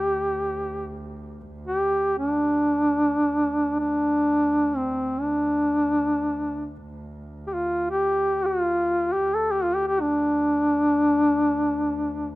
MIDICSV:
0, 0, Header, 1, 3, 480
1, 0, Start_track
1, 0, Tempo, 500000
1, 11860, End_track
2, 0, Start_track
2, 0, Title_t, "Duduk"
2, 0, Program_c, 0, 69
2, 0, Note_on_c, 0, 67, 81
2, 999, Note_off_c, 0, 67, 0
2, 1608, Note_on_c, 0, 67, 85
2, 2057, Note_off_c, 0, 67, 0
2, 2099, Note_on_c, 0, 62, 82
2, 3616, Note_off_c, 0, 62, 0
2, 3645, Note_on_c, 0, 62, 82
2, 4573, Note_on_c, 0, 60, 69
2, 4587, Note_off_c, 0, 62, 0
2, 4995, Note_on_c, 0, 62, 71
2, 5010, Note_off_c, 0, 60, 0
2, 6428, Note_off_c, 0, 62, 0
2, 7169, Note_on_c, 0, 67, 54
2, 7236, Note_on_c, 0, 65, 73
2, 7250, Note_off_c, 0, 67, 0
2, 7582, Note_off_c, 0, 65, 0
2, 7587, Note_on_c, 0, 67, 79
2, 8118, Note_on_c, 0, 65, 85
2, 8133, Note_off_c, 0, 67, 0
2, 8759, Note_on_c, 0, 67, 81
2, 8773, Note_off_c, 0, 65, 0
2, 8973, Note_on_c, 0, 69, 80
2, 8987, Note_off_c, 0, 67, 0
2, 9130, Note_on_c, 0, 67, 80
2, 9144, Note_off_c, 0, 69, 0
2, 9248, Note_on_c, 0, 65, 83
2, 9262, Note_off_c, 0, 67, 0
2, 9362, Note_on_c, 0, 67, 81
2, 9376, Note_off_c, 0, 65, 0
2, 9470, Note_off_c, 0, 67, 0
2, 9483, Note_on_c, 0, 67, 80
2, 9606, Note_on_c, 0, 62, 79
2, 9620, Note_off_c, 0, 67, 0
2, 11840, Note_off_c, 0, 62, 0
2, 11860, End_track
3, 0, Start_track
3, 0, Title_t, "Double bass"
3, 0, Program_c, 1, 43
3, 0, Note_on_c, 1, 38, 67
3, 3132, Note_off_c, 1, 38, 0
3, 3137, Note_on_c, 1, 38, 65
3, 8848, Note_off_c, 1, 38, 0
3, 8854, Note_on_c, 1, 38, 63
3, 11860, Note_off_c, 1, 38, 0
3, 11860, End_track
0, 0, End_of_file